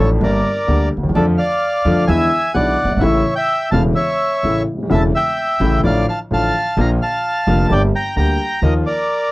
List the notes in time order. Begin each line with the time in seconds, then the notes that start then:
Already playing: A1 A2 F3 A3 D4
0.00 A4
0.20 G1 G2 D3 G3 A#3 G4 A#4 D5
0.67 D2 D3 G3 A#3 G4
0.97 D2
1.03 D#2
1.09 E2
1.15 F2 D3 F3 A3 F4 A4 D5
1.38 D5 F5
1.85 F2 D3 F3 A3 F4
2.07 E2 D3 E3 G#3 B3 E4 E5 G#5
2.54 B1 B2 D3 G#3 B3 E4 D5 F#5
2.84 F#1
2.90 G1
2.96 G#1 E5
3.01 A1 A2 C#3 E3 A3 E4 C#5
3.36 E5 G5
3.71 E1 E2 C#3 E3 A3 E4 F5 A5
3.95 C#5 E5
4.43 A1 A2 C#3 E3 A3 E4
4.73 C#1
4.78 D1
4.83 D#1
4.89 E1 E2 C#3 E3 A3 E4 E5
4.94 A5
5.15 E5 G5
5.60 A1 A2 C#3 E3 A3 E4
5.83 A1 A2 D3 F3 A3 F4 D5 F5
6.09 F5 A5
6.31 A1 A2 D3 F3 A3 F4 F5 A5
6.77 A#1 A#2 D3 F3 A#3 F4 F5 A#5
7.02 F5 A5
7.47 F1 F2 D3 F3 A#3 F4
7.69 G1 G2 D3 G3 A#3 G4 D5 G5
7.95 G5 A#5
8.16 D2 D3 G3 A#3 G4 G5 A#5
8.62 D#2 D#3 F3 A#3 F4 A#4 D#5
8.86 A#4 D5